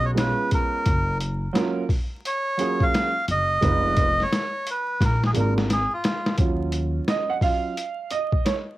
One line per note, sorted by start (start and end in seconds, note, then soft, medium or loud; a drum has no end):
0.00 0.32 B1 loud
0.00 0.11 G#3 medium
0.00 0.12 B3 medium
0.00 0.13 C#4 medium
0.00 0.13 F4 medium
0.00 0.13 G#4 medium
0.06 0.11 C#5 medium
0.15 0.85 G#3 medium
0.15 0.86 B3 medium
0.15 0.86 C#4 medium
0.15 0.87 F4 medium
0.15 0.87 C#5 medium
0.15 snare loud
0.15 closed hi-hat loud
0.19 0.51 B4 loud
0.51 1.18 A#4 loud
0.51 kick medium
0.51 closed hi-hat medium
0.86 1.46 F#1 loud
0.86 kick loud
0.86 closed hi-hat medium
1.20 closed hi-hat medium
1.53 1.81 F#3 medium
1.53 1.82 A#3 medium
1.53 1.82 C#4 medium
1.53 1.82 F4 medium
1.53 1.83 A#4 loud
1.53 snare loud
1.53 closed hi-hat medium
1.89 kick medium
1.89 open hi-hat medium
2.25 2.83 C#5 loud
2.25 closed hi-hat loud
2.57 3.10 F#3 medium
2.57 3.11 A#3 medium
2.57 3.11 C#4 medium
2.57 3.11 F4 medium
2.57 3.12 G#4 medium
2.57 closed hi-hat medium
2.80 3.26 F5 loud
2.80 kick medium
2.94 snare loud
2.94 closed hi-hat medium
3.28 3.58 F#1 medium
3.28 4.23 D#5 loud
3.28 closed hi-hat medium
3.61 4.22 F1 loud
3.61 4.05 G#3 medium
3.61 4.05 B3 medium
3.61 4.06 D#4 medium
3.61 4.06 F4 medium
3.61 4.07 B4 medium
3.61 kick loud
3.61 closed hi-hat loud
3.97 kick loud
3.97 closed hi-hat medium
4.20 4.69 C#5 loud
4.20 snare soft
4.33 snare loud
4.33 closed hi-hat medium
4.67 5.04 B4 medium
4.67 closed hi-hat medium
5.01 5.30 A#1 loud
5.01 kick medium
5.01 snare medium
5.01 closed hi-hat medium
5.05 5.23 A#4 loud
5.24 5.31 G#4 medium
5.24 snare medium
5.34 5.84 G#1 loud
5.34 5.61 G#3 medium
5.34 5.61 A#3 medium
5.34 5.62 D4 medium
5.34 5.62 F4 medium
5.34 5.63 A#4 medium
5.34 closed hi-hat medium
5.40 5.54 A#4 loud
5.58 snare medium
5.70 5.93 G#4 medium
5.70 snare loud
5.70 closed hi-hat loud
5.93 6.36 F4 medium
6.04 snare loud
6.04 closed hi-hat medium
6.26 snare loud
6.38 6.98 D#2 loud
6.38 7.40 F#3 medium
6.38 7.40 C#4 soft
6.38 7.41 F4 medium
6.38 kick loud
6.38 closed hi-hat medium
6.72 closed hi-hat medium
7.08 7.30 D#5 loud
7.08 snare loud
7.08 closed hi-hat medium
7.30 7.35 F#5 loud
7.41 7.73 F#3 soft
7.41 7.73 C#4 soft
7.41 7.73 F4 medium
7.41 8.13 F5 loud
7.41 kick medium
7.41 open hi-hat medium
7.77 closed hi-hat medium
8.11 8.46 D#5 loud
8.11 closed hi-hat medium
8.32 kick medium
8.45 8.53 C#5 medium
8.45 snare loud
8.45 closed hi-hat loud